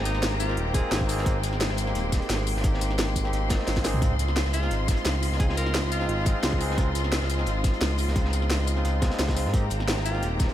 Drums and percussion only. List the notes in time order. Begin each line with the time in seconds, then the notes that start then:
0.05 closed hi-hat, tambourine
0.15 snare
0.22 snare, closed hi-hat
0.40 closed hi-hat, tambourine
0.49 snare
0.57 closed hi-hat
0.74 kick, closed hi-hat, tambourine
0.92 snare, closed hi-hat
1.01 kick
1.09 closed hi-hat, open hi-hat, tambourine
1.18 snare
1.26 kick, closed hi-hat
1.43 closed hi-hat, tambourine
1.53 snare
1.61 snare, closed hi-hat
1.69 snare
1.77 closed hi-hat, tambourine
1.87 snare
1.95 closed hi-hat
2.12 kick, snare, closed hi-hat, tambourine
2.22 closed hi-hat
2.30 snare, closed hi-hat
2.47 closed hi-hat, open hi-hat, tambourine
2.57 snare
2.64 kick, closed hi-hat
2.74 snare
2.81 closed hi-hat, tambourine
2.91 snare
2.99 snare, closed hi-hat
3.16 kick, closed hi-hat, tambourine
3.25 snare
3.33 closed hi-hat
3.50 kick, snare, closed hi-hat, tambourine
3.60 snare
3.67 snare, closed hi-hat, tambourine
3.77 kick, snare, tambourine
3.84 snare, closed hi-hat, open hi-hat, tambourine
3.94 mid tom
4.02 kick, closed hi-hat
4.19 closed hi-hat, tambourine
4.28 snare
4.36 snare, closed hi-hat
4.45 snare
4.53 closed hi-hat, tambourine
4.63 snare
4.71 closed hi-hat
4.88 kick, snare, closed hi-hat, tambourine
4.97 closed hi-hat
5.05 snare, closed hi-hat
5.23 closed hi-hat, open hi-hat, tambourine
5.32 snare
5.40 kick, closed hi-hat
5.49 snare
5.57 closed hi-hat, tambourine
5.66 snare
5.74 snare, closed hi-hat
5.92 closed hi-hat, tambourine
6.01 snare
6.09 closed hi-hat
6.26 kick, closed hi-hat, tambourine
6.43 snare, closed hi-hat
6.53 kick
6.61 closed hi-hat, open hi-hat, tambourine
6.71 snare
6.78 kick, closed hi-hat
6.95 closed hi-hat, tambourine
7.04 snare
7.12 snare, closed hi-hat
7.22 snare
7.30 closed hi-hat, tambourine
7.39 snare
7.46 closed hi-hat
7.64 kick, snare, closed hi-hat, tambourine
7.74 closed hi-hat
7.81 snare, closed hi-hat
7.98 closed hi-hat, open hi-hat, tambourine
8.08 snare
8.16 kick, closed hi-hat
8.25 snare
8.33 closed hi-hat, tambourine
8.42 snare
8.50 snare, closed hi-hat
8.67 closed hi-hat, tambourine
8.77 snare
8.85 closed hi-hat
9.02 kick, snare, closed hi-hat, tambourine
9.11 snare, closed hi-hat
9.19 snare, closed hi-hat
9.28 kick, snare, closed hi-hat
9.37 closed hi-hat, open hi-hat, tambourine
9.45 snare
9.54 kick, closed hi-hat
9.70 closed hi-hat, tambourine
9.80 snare
9.88 snare, closed hi-hat
9.97 snare
10.05 closed hi-hat, tambourine
10.15 snare
10.23 closed hi-hat
10.39 kick, snare, closed hi-hat, tambourine
10.49 closed hi-hat